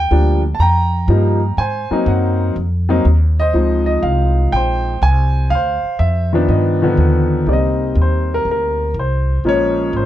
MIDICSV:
0, 0, Header, 1, 4, 480
1, 0, Start_track
1, 0, Key_signature, -3, "minor"
1, 0, Tempo, 491400
1, 1546, Time_signature, 4, 2, 24, 8
1, 9823, End_track
2, 0, Start_track
2, 0, Title_t, "Grand piano"
2, 0, Program_c, 0, 0
2, 0, Note_on_c, 0, 79, 102
2, 106, Note_on_c, 0, 53, 57
2, 106, Note_on_c, 0, 55, 50
2, 112, Note_on_c, 0, 58, 49
2, 121, Note_on_c, 0, 62, 66
2, 397, Note_off_c, 0, 55, 0
2, 398, Note_off_c, 0, 53, 0
2, 398, Note_off_c, 0, 79, 0
2, 400, Note_off_c, 0, 58, 0
2, 405, Note_off_c, 0, 62, 0
2, 533, Note_on_c, 0, 81, 75
2, 583, Note_off_c, 0, 81, 0
2, 586, Note_on_c, 0, 82, 97
2, 606, Note_on_c, 0, 79, 73
2, 1059, Note_on_c, 0, 53, 61
2, 1069, Note_on_c, 0, 55, 56
2, 1074, Note_on_c, 0, 58, 62
2, 1077, Note_on_c, 0, 63, 63
2, 1353, Note_off_c, 0, 53, 0
2, 1358, Note_off_c, 0, 55, 0
2, 1360, Note_off_c, 0, 58, 0
2, 1362, Note_off_c, 0, 63, 0
2, 1517, Note_off_c, 0, 79, 0
2, 1545, Note_on_c, 0, 80, 93
2, 1560, Note_on_c, 0, 72, 66
2, 1574, Note_off_c, 0, 82, 0
2, 1864, Note_on_c, 0, 58, 60
2, 1867, Note_on_c, 0, 54, 71
2, 1879, Note_on_c, 0, 60, 67
2, 1882, Note_on_c, 0, 63, 78
2, 2030, Note_on_c, 0, 78, 64
2, 2039, Note_off_c, 0, 80, 0
2, 2471, Note_off_c, 0, 58, 0
2, 2473, Note_off_c, 0, 54, 0
2, 2473, Note_off_c, 0, 72, 0
2, 2473, Note_off_c, 0, 78, 0
2, 2479, Note_off_c, 0, 60, 0
2, 2480, Note_off_c, 0, 63, 0
2, 2822, Note_on_c, 0, 54, 83
2, 2830, Note_on_c, 0, 58, 67
2, 2832, Note_on_c, 0, 63, 86
2, 2835, Note_on_c, 0, 60, 71
2, 2966, Note_off_c, 0, 54, 0
2, 2970, Note_off_c, 0, 58, 0
2, 2971, Note_off_c, 0, 63, 0
2, 2973, Note_off_c, 0, 60, 0
2, 3316, Note_on_c, 0, 75, 95
2, 3333, Note_on_c, 0, 72, 59
2, 3457, Note_on_c, 0, 53, 62
2, 3461, Note_on_c, 0, 56, 57
2, 3473, Note_on_c, 0, 60, 52
2, 3473, Note_on_c, 0, 63, 65
2, 3757, Note_off_c, 0, 75, 0
2, 3772, Note_on_c, 0, 75, 77
2, 3931, Note_on_c, 0, 77, 75
2, 3941, Note_off_c, 0, 75, 0
2, 4240, Note_off_c, 0, 72, 0
2, 4419, Note_on_c, 0, 79, 92
2, 4431, Note_off_c, 0, 77, 0
2, 4455, Note_on_c, 0, 72, 71
2, 4805, Note_off_c, 0, 53, 0
2, 4806, Note_off_c, 0, 56, 0
2, 4812, Note_off_c, 0, 63, 0
2, 4813, Note_off_c, 0, 60, 0
2, 4867, Note_off_c, 0, 79, 0
2, 4910, Note_on_c, 0, 80, 108
2, 5359, Note_off_c, 0, 72, 0
2, 5376, Note_on_c, 0, 77, 96
2, 5400, Note_off_c, 0, 80, 0
2, 5422, Note_on_c, 0, 72, 68
2, 5825, Note_off_c, 0, 77, 0
2, 5853, Note_on_c, 0, 76, 81
2, 6181, Note_on_c, 0, 51, 71
2, 6191, Note_on_c, 0, 53, 61
2, 6200, Note_on_c, 0, 59, 66
2, 6203, Note_on_c, 0, 62, 81
2, 6323, Note_off_c, 0, 72, 0
2, 6338, Note_on_c, 0, 75, 65
2, 6352, Note_off_c, 0, 76, 0
2, 6369, Note_on_c, 0, 71, 51
2, 6631, Note_off_c, 0, 51, 0
2, 6635, Note_off_c, 0, 53, 0
2, 6640, Note_off_c, 0, 59, 0
2, 6642, Note_off_c, 0, 62, 0
2, 6662, Note_on_c, 0, 51, 76
2, 6669, Note_on_c, 0, 53, 71
2, 6677, Note_on_c, 0, 59, 73
2, 6679, Note_on_c, 0, 50, 82
2, 7104, Note_off_c, 0, 75, 0
2, 7270, Note_off_c, 0, 51, 0
2, 7273, Note_off_c, 0, 53, 0
2, 7277, Note_off_c, 0, 59, 0
2, 7277, Note_off_c, 0, 71, 0
2, 7278, Note_off_c, 0, 50, 0
2, 7298, Note_on_c, 0, 63, 55
2, 7308, Note_on_c, 0, 58, 50
2, 7309, Note_on_c, 0, 55, 52
2, 7314, Note_on_c, 0, 74, 56
2, 7315, Note_on_c, 0, 60, 64
2, 7343, Note_off_c, 0, 74, 0
2, 7354, Note_on_c, 0, 75, 73
2, 7777, Note_off_c, 0, 75, 0
2, 7830, Note_on_c, 0, 72, 68
2, 8121, Note_off_c, 0, 72, 0
2, 8150, Note_on_c, 0, 70, 86
2, 8281, Note_off_c, 0, 70, 0
2, 8314, Note_on_c, 0, 70, 76
2, 8647, Note_off_c, 0, 63, 0
2, 8653, Note_off_c, 0, 55, 0
2, 8653, Note_off_c, 0, 58, 0
2, 8656, Note_off_c, 0, 60, 0
2, 8738, Note_off_c, 0, 70, 0
2, 8785, Note_on_c, 0, 72, 73
2, 9228, Note_on_c, 0, 53, 67
2, 9231, Note_on_c, 0, 56, 60
2, 9236, Note_on_c, 0, 58, 65
2, 9246, Note_on_c, 0, 61, 74
2, 9267, Note_on_c, 0, 73, 97
2, 9530, Note_off_c, 0, 72, 0
2, 9694, Note_off_c, 0, 73, 0
2, 9735, Note_on_c, 0, 72, 70
2, 9823, Note_off_c, 0, 53, 0
2, 9823, Note_off_c, 0, 56, 0
2, 9823, Note_off_c, 0, 58, 0
2, 9823, Note_off_c, 0, 61, 0
2, 9823, Note_off_c, 0, 72, 0
2, 9823, End_track
3, 0, Start_track
3, 0, Title_t, "Upright bass"
3, 0, Program_c, 1, 32
3, 107, Note_on_c, 1, 38, 91
3, 570, Note_off_c, 1, 38, 0
3, 576, Note_on_c, 1, 41, 79
3, 1047, Note_off_c, 1, 41, 0
3, 1053, Note_on_c, 1, 43, 98
3, 1525, Note_off_c, 1, 43, 0
3, 1536, Note_on_c, 1, 44, 77
3, 1840, Note_off_c, 1, 44, 0
3, 2015, Note_on_c, 1, 42, 93
3, 2485, Note_off_c, 1, 42, 0
3, 2499, Note_on_c, 1, 41, 84
3, 2967, Note_off_c, 1, 41, 0
3, 2980, Note_on_c, 1, 39, 96
3, 3447, Note_off_c, 1, 39, 0
3, 3453, Note_on_c, 1, 37, 70
3, 3923, Note_off_c, 1, 37, 0
3, 3933, Note_on_c, 1, 36, 99
3, 4403, Note_off_c, 1, 36, 0
3, 4421, Note_on_c, 1, 34, 84
3, 4887, Note_off_c, 1, 34, 0
3, 4901, Note_on_c, 1, 36, 96
3, 5367, Note_off_c, 1, 36, 0
3, 5377, Note_on_c, 1, 38, 77
3, 5679, Note_off_c, 1, 38, 0
3, 5852, Note_on_c, 1, 41, 96
3, 6323, Note_off_c, 1, 41, 0
3, 6335, Note_on_c, 1, 43, 83
3, 6804, Note_off_c, 1, 43, 0
3, 6810, Note_on_c, 1, 39, 87
3, 7282, Note_off_c, 1, 39, 0
3, 7291, Note_on_c, 1, 36, 73
3, 7763, Note_off_c, 1, 36, 0
3, 7770, Note_on_c, 1, 39, 94
3, 8242, Note_off_c, 1, 39, 0
3, 8254, Note_on_c, 1, 38, 79
3, 8725, Note_off_c, 1, 38, 0
3, 8735, Note_on_c, 1, 36, 90
3, 9206, Note_off_c, 1, 36, 0
3, 9220, Note_on_c, 1, 34, 69
3, 9689, Note_off_c, 1, 34, 0
3, 9701, Note_on_c, 1, 32, 89
3, 9823, Note_off_c, 1, 32, 0
3, 9823, End_track
4, 0, Start_track
4, 0, Title_t, "Muted upright bass strokes"
4, 1864, Note_on_c, 9, 29, 33
4, 1962, Note_off_c, 9, 29, 0
4, 5698, Note_on_c, 9, 29, 34
4, 5795, Note_off_c, 9, 29, 0
4, 9823, End_track
0, 0, End_of_file